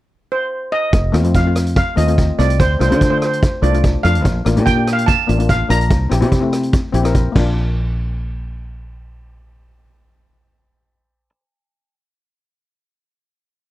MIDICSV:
0, 0, Header, 1, 5, 480
1, 0, Start_track
1, 0, Key_signature, -2, "major"
1, 0, Tempo, 414651
1, 1081, Time_signature, 4, 2, 24, 8
1, 15865, End_track
2, 0, Start_track
2, 0, Title_t, "Steel pan"
2, 0, Program_c, 0, 114
2, 368, Note_on_c, 0, 72, 77
2, 835, Note_on_c, 0, 75, 90
2, 859, Note_off_c, 0, 72, 0
2, 1512, Note_off_c, 0, 75, 0
2, 1566, Note_on_c, 0, 77, 70
2, 2031, Note_off_c, 0, 77, 0
2, 2045, Note_on_c, 0, 77, 80
2, 2282, Note_on_c, 0, 75, 75
2, 2290, Note_off_c, 0, 77, 0
2, 2727, Note_off_c, 0, 75, 0
2, 2763, Note_on_c, 0, 74, 86
2, 3007, Note_on_c, 0, 72, 80
2, 3009, Note_off_c, 0, 74, 0
2, 3233, Note_off_c, 0, 72, 0
2, 3247, Note_on_c, 0, 72, 73
2, 3326, Note_off_c, 0, 72, 0
2, 3342, Note_on_c, 0, 72, 55
2, 3403, Note_off_c, 0, 72, 0
2, 3417, Note_on_c, 0, 72, 58
2, 3486, Note_off_c, 0, 72, 0
2, 3500, Note_on_c, 0, 72, 58
2, 3579, Note_off_c, 0, 72, 0
2, 3592, Note_on_c, 0, 72, 71
2, 3669, Note_off_c, 0, 72, 0
2, 3681, Note_on_c, 0, 72, 51
2, 3754, Note_off_c, 0, 72, 0
2, 3768, Note_on_c, 0, 72, 62
2, 3846, Note_off_c, 0, 72, 0
2, 4201, Note_on_c, 0, 74, 76
2, 4669, Note_on_c, 0, 77, 97
2, 4693, Note_off_c, 0, 74, 0
2, 5345, Note_off_c, 0, 77, 0
2, 5391, Note_on_c, 0, 79, 90
2, 5706, Note_on_c, 0, 77, 82
2, 5722, Note_off_c, 0, 79, 0
2, 5863, Note_on_c, 0, 81, 91
2, 5875, Note_off_c, 0, 77, 0
2, 6357, Note_on_c, 0, 77, 85
2, 6362, Note_off_c, 0, 81, 0
2, 6464, Note_off_c, 0, 77, 0
2, 6602, Note_on_c, 0, 82, 93
2, 8229, Note_off_c, 0, 82, 0
2, 15865, End_track
3, 0, Start_track
3, 0, Title_t, "Steel pan"
3, 0, Program_c, 1, 114
3, 1299, Note_on_c, 1, 57, 77
3, 1311, Note_on_c, 1, 60, 69
3, 1323, Note_on_c, 1, 65, 88
3, 1384, Note_off_c, 1, 57, 0
3, 1390, Note_off_c, 1, 60, 0
3, 1396, Note_off_c, 1, 65, 0
3, 1431, Note_on_c, 1, 57, 63
3, 1445, Note_on_c, 1, 60, 59
3, 1455, Note_on_c, 1, 65, 68
3, 1579, Note_off_c, 1, 57, 0
3, 1586, Note_off_c, 1, 60, 0
3, 1591, Note_off_c, 1, 65, 0
3, 1679, Note_on_c, 1, 57, 55
3, 1689, Note_on_c, 1, 60, 49
3, 1700, Note_on_c, 1, 65, 65
3, 2038, Note_off_c, 1, 57, 0
3, 2043, Note_off_c, 1, 60, 0
3, 2049, Note_off_c, 1, 65, 0
3, 2270, Note_on_c, 1, 57, 72
3, 2278, Note_on_c, 1, 60, 64
3, 2291, Note_on_c, 1, 65, 76
3, 2350, Note_off_c, 1, 57, 0
3, 2354, Note_off_c, 1, 60, 0
3, 2360, Note_off_c, 1, 65, 0
3, 2397, Note_on_c, 1, 57, 67
3, 2408, Note_on_c, 1, 60, 62
3, 2421, Note_on_c, 1, 65, 72
3, 2616, Note_off_c, 1, 57, 0
3, 2621, Note_off_c, 1, 60, 0
3, 2628, Note_off_c, 1, 65, 0
3, 2763, Note_on_c, 1, 57, 64
3, 2771, Note_on_c, 1, 60, 60
3, 2785, Note_on_c, 1, 65, 69
3, 3002, Note_off_c, 1, 57, 0
3, 3005, Note_off_c, 1, 60, 0
3, 3013, Note_off_c, 1, 65, 0
3, 3232, Note_on_c, 1, 57, 65
3, 3242, Note_on_c, 1, 62, 65
3, 3254, Note_on_c, 1, 65, 72
3, 3310, Note_off_c, 1, 57, 0
3, 3315, Note_off_c, 1, 62, 0
3, 3321, Note_off_c, 1, 65, 0
3, 3356, Note_on_c, 1, 57, 63
3, 3365, Note_on_c, 1, 62, 62
3, 3379, Note_on_c, 1, 65, 79
3, 3500, Note_off_c, 1, 57, 0
3, 3505, Note_off_c, 1, 62, 0
3, 3512, Note_off_c, 1, 65, 0
3, 3596, Note_on_c, 1, 57, 62
3, 3605, Note_on_c, 1, 62, 59
3, 3621, Note_on_c, 1, 65, 63
3, 3955, Note_off_c, 1, 57, 0
3, 3959, Note_off_c, 1, 62, 0
3, 3967, Note_off_c, 1, 65, 0
3, 4190, Note_on_c, 1, 57, 63
3, 4203, Note_on_c, 1, 62, 69
3, 4213, Note_on_c, 1, 65, 79
3, 4268, Note_off_c, 1, 57, 0
3, 4274, Note_off_c, 1, 62, 0
3, 4279, Note_off_c, 1, 65, 0
3, 4316, Note_on_c, 1, 57, 63
3, 4327, Note_on_c, 1, 62, 61
3, 4339, Note_on_c, 1, 65, 76
3, 4534, Note_off_c, 1, 57, 0
3, 4539, Note_off_c, 1, 62, 0
3, 4545, Note_off_c, 1, 65, 0
3, 4668, Note_on_c, 1, 57, 61
3, 4677, Note_on_c, 1, 62, 61
3, 4693, Note_on_c, 1, 65, 68
3, 4912, Note_off_c, 1, 57, 0
3, 4916, Note_off_c, 1, 62, 0
3, 4924, Note_off_c, 1, 65, 0
3, 5150, Note_on_c, 1, 58, 73
3, 5163, Note_on_c, 1, 62, 59
3, 5174, Note_on_c, 1, 65, 76
3, 5227, Note_off_c, 1, 58, 0
3, 5234, Note_off_c, 1, 62, 0
3, 5239, Note_off_c, 1, 65, 0
3, 5276, Note_on_c, 1, 58, 61
3, 5287, Note_on_c, 1, 62, 62
3, 5300, Note_on_c, 1, 67, 74
3, 5418, Note_off_c, 1, 58, 0
3, 5424, Note_off_c, 1, 62, 0
3, 5430, Note_off_c, 1, 67, 0
3, 5508, Note_on_c, 1, 58, 55
3, 5517, Note_on_c, 1, 62, 55
3, 5528, Note_on_c, 1, 67, 65
3, 5869, Note_off_c, 1, 58, 0
3, 5873, Note_off_c, 1, 62, 0
3, 5879, Note_off_c, 1, 67, 0
3, 6100, Note_on_c, 1, 58, 71
3, 6114, Note_on_c, 1, 62, 67
3, 6122, Note_on_c, 1, 65, 75
3, 6181, Note_off_c, 1, 58, 0
3, 6188, Note_off_c, 1, 62, 0
3, 6192, Note_off_c, 1, 65, 0
3, 6227, Note_on_c, 1, 58, 65
3, 6239, Note_on_c, 1, 62, 58
3, 6252, Note_on_c, 1, 65, 70
3, 6447, Note_off_c, 1, 58, 0
3, 6453, Note_off_c, 1, 62, 0
3, 6459, Note_off_c, 1, 65, 0
3, 6582, Note_on_c, 1, 58, 63
3, 6592, Note_on_c, 1, 62, 61
3, 6604, Note_on_c, 1, 65, 72
3, 6827, Note_off_c, 1, 58, 0
3, 6832, Note_off_c, 1, 62, 0
3, 6838, Note_off_c, 1, 65, 0
3, 7056, Note_on_c, 1, 60, 65
3, 7068, Note_on_c, 1, 64, 58
3, 7078, Note_on_c, 1, 67, 80
3, 7138, Note_off_c, 1, 60, 0
3, 7144, Note_off_c, 1, 64, 0
3, 7149, Note_off_c, 1, 67, 0
3, 7183, Note_on_c, 1, 60, 76
3, 7189, Note_on_c, 1, 64, 74
3, 7204, Note_on_c, 1, 67, 87
3, 7330, Note_off_c, 1, 60, 0
3, 7333, Note_off_c, 1, 64, 0
3, 7340, Note_off_c, 1, 67, 0
3, 7417, Note_on_c, 1, 60, 73
3, 7428, Note_on_c, 1, 64, 61
3, 7440, Note_on_c, 1, 57, 77
3, 7782, Note_off_c, 1, 60, 0
3, 7788, Note_off_c, 1, 64, 0
3, 7793, Note_off_c, 1, 57, 0
3, 8018, Note_on_c, 1, 60, 84
3, 8030, Note_on_c, 1, 64, 74
3, 8043, Note_on_c, 1, 67, 87
3, 8098, Note_off_c, 1, 60, 0
3, 8104, Note_off_c, 1, 64, 0
3, 8111, Note_off_c, 1, 67, 0
3, 8142, Note_on_c, 1, 60, 82
3, 8156, Note_on_c, 1, 64, 67
3, 8168, Note_on_c, 1, 70, 81
3, 8363, Note_off_c, 1, 60, 0
3, 8370, Note_off_c, 1, 64, 0
3, 8376, Note_off_c, 1, 70, 0
3, 8472, Note_on_c, 1, 58, 71
3, 8518, Note_on_c, 1, 62, 70
3, 8559, Note_on_c, 1, 65, 78
3, 13030, Note_off_c, 1, 58, 0
3, 13077, Note_off_c, 1, 62, 0
3, 13118, Note_off_c, 1, 65, 0
3, 15865, End_track
4, 0, Start_track
4, 0, Title_t, "Fingered electric bass"
4, 0, Program_c, 2, 33
4, 1075, Note_on_c, 2, 29, 77
4, 1269, Note_off_c, 2, 29, 0
4, 1314, Note_on_c, 2, 39, 77
4, 1436, Note_off_c, 2, 39, 0
4, 1436, Note_on_c, 2, 41, 88
4, 2107, Note_off_c, 2, 41, 0
4, 2282, Note_on_c, 2, 39, 69
4, 2664, Note_off_c, 2, 39, 0
4, 2765, Note_on_c, 2, 36, 79
4, 3007, Note_off_c, 2, 36, 0
4, 3007, Note_on_c, 2, 38, 86
4, 3195, Note_off_c, 2, 38, 0
4, 3245, Note_on_c, 2, 36, 73
4, 3365, Note_on_c, 2, 50, 77
4, 3383, Note_off_c, 2, 36, 0
4, 4031, Note_off_c, 2, 50, 0
4, 4194, Note_on_c, 2, 36, 75
4, 4578, Note_off_c, 2, 36, 0
4, 4682, Note_on_c, 2, 41, 74
4, 4918, Note_off_c, 2, 41, 0
4, 4918, Note_on_c, 2, 34, 86
4, 5109, Note_off_c, 2, 34, 0
4, 5163, Note_on_c, 2, 33, 79
4, 5288, Note_on_c, 2, 46, 85
4, 5305, Note_off_c, 2, 33, 0
4, 5950, Note_off_c, 2, 46, 0
4, 6125, Note_on_c, 2, 33, 71
4, 6503, Note_off_c, 2, 33, 0
4, 6596, Note_on_c, 2, 34, 84
4, 6839, Note_off_c, 2, 34, 0
4, 6839, Note_on_c, 2, 36, 90
4, 7028, Note_off_c, 2, 36, 0
4, 7078, Note_on_c, 2, 34, 76
4, 7198, Note_on_c, 2, 48, 88
4, 7215, Note_off_c, 2, 34, 0
4, 7864, Note_off_c, 2, 48, 0
4, 8029, Note_on_c, 2, 34, 74
4, 8413, Note_off_c, 2, 34, 0
4, 8512, Note_on_c, 2, 34, 85
4, 13070, Note_off_c, 2, 34, 0
4, 15865, End_track
5, 0, Start_track
5, 0, Title_t, "Drums"
5, 1076, Note_on_c, 9, 42, 55
5, 1077, Note_on_c, 9, 36, 98
5, 1192, Note_off_c, 9, 42, 0
5, 1193, Note_off_c, 9, 36, 0
5, 1320, Note_on_c, 9, 37, 74
5, 1320, Note_on_c, 9, 42, 74
5, 1435, Note_off_c, 9, 37, 0
5, 1435, Note_off_c, 9, 42, 0
5, 1438, Note_on_c, 9, 42, 50
5, 1554, Note_off_c, 9, 42, 0
5, 1554, Note_on_c, 9, 42, 56
5, 1558, Note_on_c, 9, 36, 75
5, 1670, Note_off_c, 9, 42, 0
5, 1674, Note_off_c, 9, 36, 0
5, 1801, Note_on_c, 9, 37, 78
5, 1801, Note_on_c, 9, 42, 74
5, 1917, Note_off_c, 9, 37, 0
5, 1917, Note_off_c, 9, 42, 0
5, 1928, Note_on_c, 9, 42, 51
5, 2041, Note_off_c, 9, 42, 0
5, 2041, Note_on_c, 9, 42, 53
5, 2042, Note_on_c, 9, 36, 94
5, 2156, Note_off_c, 9, 42, 0
5, 2157, Note_off_c, 9, 36, 0
5, 2286, Note_on_c, 9, 42, 82
5, 2402, Note_off_c, 9, 42, 0
5, 2408, Note_on_c, 9, 42, 55
5, 2524, Note_off_c, 9, 42, 0
5, 2524, Note_on_c, 9, 36, 75
5, 2525, Note_on_c, 9, 42, 54
5, 2640, Note_off_c, 9, 36, 0
5, 2641, Note_off_c, 9, 42, 0
5, 2771, Note_on_c, 9, 37, 65
5, 2771, Note_on_c, 9, 42, 72
5, 2887, Note_off_c, 9, 37, 0
5, 2887, Note_off_c, 9, 42, 0
5, 2893, Note_on_c, 9, 42, 56
5, 3007, Note_on_c, 9, 36, 95
5, 3009, Note_off_c, 9, 42, 0
5, 3009, Note_on_c, 9, 42, 60
5, 3122, Note_off_c, 9, 36, 0
5, 3124, Note_off_c, 9, 42, 0
5, 3253, Note_on_c, 9, 37, 72
5, 3253, Note_on_c, 9, 42, 68
5, 3368, Note_off_c, 9, 37, 0
5, 3368, Note_off_c, 9, 42, 0
5, 3376, Note_on_c, 9, 42, 55
5, 3486, Note_on_c, 9, 36, 76
5, 3491, Note_off_c, 9, 42, 0
5, 3491, Note_on_c, 9, 42, 58
5, 3602, Note_off_c, 9, 36, 0
5, 3607, Note_off_c, 9, 42, 0
5, 3725, Note_on_c, 9, 37, 69
5, 3725, Note_on_c, 9, 42, 62
5, 3841, Note_off_c, 9, 37, 0
5, 3841, Note_off_c, 9, 42, 0
5, 3858, Note_on_c, 9, 42, 57
5, 3967, Note_on_c, 9, 36, 99
5, 3973, Note_off_c, 9, 42, 0
5, 3973, Note_on_c, 9, 42, 55
5, 4083, Note_off_c, 9, 36, 0
5, 4089, Note_off_c, 9, 42, 0
5, 4206, Note_on_c, 9, 42, 65
5, 4322, Note_off_c, 9, 42, 0
5, 4332, Note_on_c, 9, 42, 51
5, 4443, Note_off_c, 9, 42, 0
5, 4443, Note_on_c, 9, 42, 55
5, 4444, Note_on_c, 9, 36, 80
5, 4559, Note_off_c, 9, 42, 0
5, 4560, Note_off_c, 9, 36, 0
5, 4683, Note_on_c, 9, 37, 68
5, 4683, Note_on_c, 9, 42, 70
5, 4799, Note_off_c, 9, 37, 0
5, 4799, Note_off_c, 9, 42, 0
5, 4803, Note_on_c, 9, 42, 55
5, 4919, Note_off_c, 9, 42, 0
5, 4921, Note_on_c, 9, 36, 94
5, 4923, Note_on_c, 9, 42, 53
5, 5037, Note_off_c, 9, 36, 0
5, 5039, Note_off_c, 9, 42, 0
5, 5161, Note_on_c, 9, 37, 76
5, 5161, Note_on_c, 9, 42, 76
5, 5277, Note_off_c, 9, 37, 0
5, 5277, Note_off_c, 9, 42, 0
5, 5286, Note_on_c, 9, 42, 55
5, 5401, Note_on_c, 9, 36, 77
5, 5402, Note_off_c, 9, 42, 0
5, 5402, Note_on_c, 9, 42, 57
5, 5517, Note_off_c, 9, 36, 0
5, 5518, Note_off_c, 9, 42, 0
5, 5641, Note_on_c, 9, 37, 74
5, 5641, Note_on_c, 9, 42, 74
5, 5757, Note_off_c, 9, 37, 0
5, 5757, Note_off_c, 9, 42, 0
5, 5770, Note_on_c, 9, 42, 58
5, 5880, Note_on_c, 9, 36, 98
5, 5884, Note_off_c, 9, 42, 0
5, 5884, Note_on_c, 9, 42, 58
5, 5996, Note_off_c, 9, 36, 0
5, 5999, Note_off_c, 9, 42, 0
5, 6124, Note_on_c, 9, 42, 69
5, 6239, Note_off_c, 9, 42, 0
5, 6247, Note_on_c, 9, 42, 58
5, 6358, Note_on_c, 9, 36, 76
5, 6361, Note_off_c, 9, 42, 0
5, 6361, Note_on_c, 9, 42, 60
5, 6474, Note_off_c, 9, 36, 0
5, 6477, Note_off_c, 9, 42, 0
5, 6599, Note_on_c, 9, 37, 68
5, 6599, Note_on_c, 9, 42, 81
5, 6715, Note_off_c, 9, 37, 0
5, 6715, Note_off_c, 9, 42, 0
5, 6723, Note_on_c, 9, 42, 51
5, 6834, Note_off_c, 9, 42, 0
5, 6834, Note_on_c, 9, 42, 56
5, 6836, Note_on_c, 9, 36, 96
5, 6950, Note_off_c, 9, 42, 0
5, 6951, Note_off_c, 9, 36, 0
5, 7078, Note_on_c, 9, 37, 81
5, 7078, Note_on_c, 9, 42, 77
5, 7193, Note_off_c, 9, 37, 0
5, 7193, Note_off_c, 9, 42, 0
5, 7198, Note_on_c, 9, 42, 56
5, 7314, Note_off_c, 9, 42, 0
5, 7315, Note_on_c, 9, 36, 78
5, 7316, Note_on_c, 9, 42, 54
5, 7430, Note_off_c, 9, 36, 0
5, 7432, Note_off_c, 9, 42, 0
5, 7555, Note_on_c, 9, 37, 72
5, 7555, Note_on_c, 9, 42, 70
5, 7671, Note_off_c, 9, 37, 0
5, 7671, Note_off_c, 9, 42, 0
5, 7677, Note_on_c, 9, 42, 55
5, 7790, Note_off_c, 9, 42, 0
5, 7790, Note_on_c, 9, 42, 54
5, 7794, Note_on_c, 9, 36, 103
5, 7905, Note_off_c, 9, 42, 0
5, 7909, Note_off_c, 9, 36, 0
5, 8033, Note_on_c, 9, 42, 76
5, 8149, Note_off_c, 9, 42, 0
5, 8158, Note_on_c, 9, 37, 72
5, 8158, Note_on_c, 9, 42, 56
5, 8273, Note_off_c, 9, 42, 0
5, 8273, Note_on_c, 9, 42, 58
5, 8274, Note_off_c, 9, 37, 0
5, 8274, Note_on_c, 9, 36, 75
5, 8389, Note_off_c, 9, 42, 0
5, 8390, Note_off_c, 9, 36, 0
5, 8515, Note_on_c, 9, 49, 79
5, 8516, Note_on_c, 9, 36, 90
5, 8630, Note_off_c, 9, 49, 0
5, 8631, Note_off_c, 9, 36, 0
5, 15865, End_track
0, 0, End_of_file